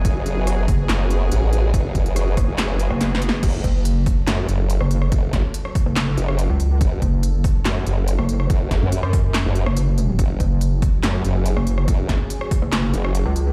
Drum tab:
CC |------------------------------------------------|------------------------------------------------|x-----------------------------------------------|------------------------------------------------|
HH |x-----x-----x-----o-----x-----x-----x-----x-----|x-----x--x--x-----o-----x-----x-----x-----x-----|x-----x-----x-----o-----x-----x-----x-----x-----|x-----x-----x-----o-----x-----x-----x-----x-----|
CP |------------------------x-----------------------|------------------------x-----------------------|------------------------x-----------------------|------------------------x-----------------------|
SD |------------r-----------o-----------------------|------------r-----r-----o--------r--o---o---o---|------------------------o--------------r-----r--|------o--------r--------o--------r--------------|
BD |o-----------------o-----------------------------|o-----o-----------o-----------------------------|o-----o-----------o-----------------------------|o-----o-----------o-----------------------------|

CC |------------------------------------------------|------------------------------------------------|------------------------------------------------|------------------------------------------------|
HH |x-----x-----x-----o-----x-----x-----x-----x-----|x-----x-----x-----o-----x-----x-----x-----x-----|x-----x-----x-----o-----x-----x-----x-----x-----|x-----x-----x-----o-----x-----x-----x-----x-----|
CP |------------------------x-----------------------|------------------------x-----------------------|------------------------x-----------------------|------------------------x-----------------------|
SD |------------------------o--------------r-----r--|------o--------r--------o--------r--------------|------------------------o--------------r-----r--|------o--------r--------o--------r--------------|
BD |o-----o-----------o-----------------------------|o-----o-----------o-----------------------------|o-----o-----------o-----------------------------|o-----o-----------o-----------------------------|